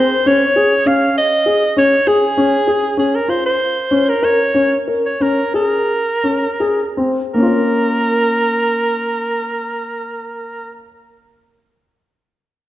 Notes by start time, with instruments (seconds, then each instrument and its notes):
Already playing: grand piano C4, soprano saxophone C5
0.26 grand piano C#4, soprano saxophone C#5
0.56 grand piano G#4
0.86 grand piano C#4, soprano saxophone F5
1.18 soprano saxophone D#5
1.46 grand piano G#4
1.77 grand piano C#4, soprano saxophone C#5
2.07 grand piano G#4, soprano saxophone G#4
2.37 grand piano C#4
2.67 grand piano G#4
2.97 grand piano C#4, soprano saxophone G#4
3.15 soprano saxophone A#4
3.28 grand piano F4, soprano saxophone C5
3.46 soprano saxophone C5
3.91 grand piano C#4
4.09 soprano saxophone A#4
4.23 grand piano A#4, soprano saxophone C#5
4.54 grand piano C#4
4.88 grand piano A#4
5.06 soprano saxophone C#5
5.21 grand piano C#4, soprano saxophone A#4
5.54 grand piano G#4, soprano saxophone A#4
6.24 grand piano C#4
6.60 grand piano G#4
6.97 grand piano C4
7.34 grand piano A#3, soprano saxophone A#4
7.38 grand piano C#4
7.42 grand piano F4
7.46 grand piano A#4